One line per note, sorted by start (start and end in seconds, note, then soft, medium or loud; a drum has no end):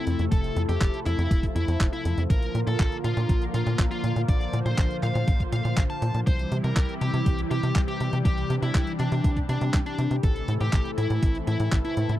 0.00 2.26 C3 medium
0.00 6.23 F3 medium
0.00 2.26 A3 medium
0.00 0.30 C4 medium
0.00 0.23 E4 medium
0.00 2.26 A4 medium
0.07 0.17 F2 medium
0.07 closed hi-hat medium
0.19 0.29 F2 medium
0.19 closed hi-hat medium
0.32 0.51 F1 medium
0.32 2.28 E4 medium
0.32 0.60 A4 loud
0.32 kick loud
0.32 closed hi-hat medium
0.44 closed hi-hat soft
0.56 0.66 F2 medium
0.56 closed hi-hat medium
0.69 0.78 F2 medium
0.69 0.98 G4 medium
0.69 closed hi-hat medium
0.81 0.91 F1 loud
0.81 kick loud
0.81 clap loud
0.81 closed hi-hat medium
0.94 closed hi-hat soft
1.06 1.16 F2 medium
1.06 1.44 E4 medium
1.06 clap soft
1.06 closed hi-hat medium
1.19 1.28 F2 loud
1.19 closed hi-hat medium
1.31 1.50 F1 medium
1.31 kick loud
1.31 closed hi-hat medium
1.43 kick medium
1.43 closed hi-hat soft
1.56 1.65 F2 medium
1.56 1.84 E4 medium
1.56 closed hi-hat medium
1.68 1.78 F2 loud
1.68 closed hi-hat medium
1.80 1.90 F1 medium
1.80 kick loud
1.80 clap loud
1.80 closed hi-hat medium
1.93 2.22 E4 medium
1.93 closed hi-hat soft
2.05 2.15 F2 medium
2.05 closed hi-hat medium
2.18 2.27 F2 medium
2.18 closed hi-hat medium
2.30 2.49 A#1 medium
2.30 6.23 D3 medium
2.30 6.23 A#3 medium
2.30 6.23 F4 medium
2.30 4.26 A#4 medium
2.30 2.59 A#4 loud
2.30 kick loud
2.30 closed hi-hat medium
2.42 closed hi-hat soft
2.55 2.64 A#2 medium
2.55 closed hi-hat medium
2.67 2.77 A#2 loud
2.67 2.96 A4 medium
2.67 closed hi-hat medium
2.80 2.89 A#1 loud
2.80 kick loud
2.80 clap loud
2.80 closed hi-hat medium
2.92 closed hi-hat soft
3.04 3.14 A#2 medium
3.04 3.43 F4 medium
3.04 closed hi-hat medium
3.17 3.26 A#2 loud
3.17 closed hi-hat medium
3.29 3.48 A#1 medium
3.29 kick loud
3.29 closed hi-hat medium
3.42 closed hi-hat soft
3.54 3.64 A#2 medium
3.54 3.83 F4 medium
3.54 closed hi-hat medium
3.67 3.76 A#2 loud
3.67 closed hi-hat medium
3.79 3.88 A#1 medium
3.79 kick loud
3.79 clap loud
3.79 closed hi-hat medium
3.91 4.20 F4 medium
3.91 closed hi-hat soft
4.04 4.13 A#2 medium
4.04 closed hi-hat medium
4.16 4.26 A#2 medium
4.16 closed hi-hat soft
4.28 4.48 A#1 loud
4.28 6.25 C5 medium
4.28 4.57 D5 loud
4.28 kick loud
4.28 closed hi-hat medium
4.41 closed hi-hat soft
4.53 4.63 A#2 medium
4.53 closed hi-hat medium
4.66 4.75 A#2 loud
4.66 4.94 C5 medium
4.66 closed hi-hat medium
4.78 4.88 A#1 medium
4.78 kick loud
4.78 clap loud
4.78 closed hi-hat medium
4.91 closed hi-hat soft
5.03 5.12 A#2 medium
5.03 5.41 F5 medium
5.03 clap soft
5.03 closed hi-hat medium
5.15 5.25 A#2 loud
5.15 closed hi-hat soft
5.28 5.47 A#1 medium
5.28 kick loud
5.28 closed hi-hat medium
5.40 kick medium
5.40 closed hi-hat soft
5.52 5.62 A#2 medium
5.52 5.81 F5 medium
5.52 closed hi-hat medium
5.65 5.74 A#2 medium
5.65 closed hi-hat medium
5.77 5.87 A#1 loud
5.77 kick loud
5.77 clap loud
5.77 closed hi-hat medium
5.90 6.18 A5 medium
5.90 closed hi-hat soft
6.02 6.12 A#2 loud
6.02 closed hi-hat medium
6.14 6.24 A#2 medium
6.14 closed hi-hat soft
6.27 6.46 C2 medium
6.27 10.19 C3 medium
6.27 10.19 E3 medium
6.27 10.19 G3 medium
6.27 8.23 E4 medium
6.27 10.19 G4 loud
6.27 6.56 C5 medium
6.27 kick loud
6.27 closed hi-hat medium
6.39 closed hi-hat soft
6.52 6.61 C3 medium
6.52 closed hi-hat medium
6.64 6.74 C3 medium
6.64 6.93 A#4 medium
6.64 closed hi-hat soft
6.76 6.86 C2 loud
6.76 kick loud
6.76 clap loud
6.76 closed hi-hat medium
6.89 closed hi-hat soft
7.01 7.11 C3 medium
7.01 7.40 G4 medium
7.01 closed hi-hat medium
7.14 7.23 C3 loud
7.14 closed hi-hat soft
7.26 7.45 C2 medium
7.26 kick loud
7.26 closed hi-hat medium
7.38 closed hi-hat soft
7.51 7.60 C3 medium
7.51 7.80 G4 medium
7.51 closed hi-hat medium
7.63 7.73 C3 medium
7.63 closed hi-hat medium
7.75 7.85 C2 medium
7.75 kick loud
7.75 clap loud
7.75 closed hi-hat medium
7.88 8.17 G4 medium
7.88 closed hi-hat soft
8.00 8.10 C3 medium
8.00 closed hi-hat medium
8.13 8.22 C3 medium
8.13 closed hi-hat soft
8.25 8.44 C2 medium
8.25 10.21 D4 medium
8.25 8.54 G4 loud
8.25 kick loud
8.25 closed hi-hat medium
8.38 closed hi-hat soft
8.50 8.60 C3 medium
8.50 closed hi-hat medium
8.62 8.72 C3 medium
8.62 8.91 E4 medium
8.62 closed hi-hat medium
8.75 8.84 C2 medium
8.75 kick loud
8.75 clap loud
8.75 closed hi-hat medium
8.87 closed hi-hat soft
8.99 9.09 C3 medium
8.99 9.38 D4 medium
8.99 clap soft
8.99 closed hi-hat medium
9.12 9.22 C3 loud
9.12 closed hi-hat soft
9.24 9.43 C2 medium
9.24 kick loud
9.24 closed hi-hat medium
9.37 kick medium
9.37 closed hi-hat soft
9.49 9.59 C3 medium
9.49 9.78 D4 medium
9.49 closed hi-hat medium
9.61 9.71 C3 medium
9.61 closed hi-hat soft
9.74 9.83 C2 medium
9.74 kick loud
9.74 clap loud
9.74 closed hi-hat medium
9.86 10.15 D4 medium
9.86 closed hi-hat soft
9.98 10.08 C3 medium
9.98 closed hi-hat medium
10.11 10.21 C3 medium
10.11 closed hi-hat soft
10.23 10.43 A1 medium
10.23 12.19 C3 medium
10.23 12.19 E3 medium
10.23 12.19 A3 medium
10.23 12.19 E4 medium
10.23 12.19 A4 medium
10.23 10.52 A4 loud
10.23 kick loud
10.23 closed hi-hat medium
10.36 closed hi-hat soft
10.48 10.58 A2 medium
10.48 closed hi-hat medium
10.61 10.70 A2 medium
10.61 10.89 G4 medium
10.61 closed hi-hat medium
10.73 10.83 A1 loud
10.73 kick loud
10.73 clap loud
10.73 closed hi-hat medium
10.85 closed hi-hat soft
10.98 11.07 A2 medium
10.98 11.36 E4 medium
10.98 closed hi-hat medium
11.10 11.20 A2 loud
11.10 closed hi-hat soft
11.23 11.42 A1 medium
11.23 kick loud
11.23 closed hi-hat medium
11.35 closed hi-hat soft
11.47 11.57 A2 medium
11.47 11.76 E4 medium
11.47 closed hi-hat medium
11.60 11.69 A2 loud
11.60 closed hi-hat medium
11.72 11.82 A1 medium
11.72 kick loud
11.72 clap loud
11.72 closed hi-hat medium
11.85 12.14 E4 medium
11.85 closed hi-hat soft
11.97 12.07 A2 medium
11.97 closed hi-hat medium
12.09 12.19 A2 medium
12.09 closed hi-hat soft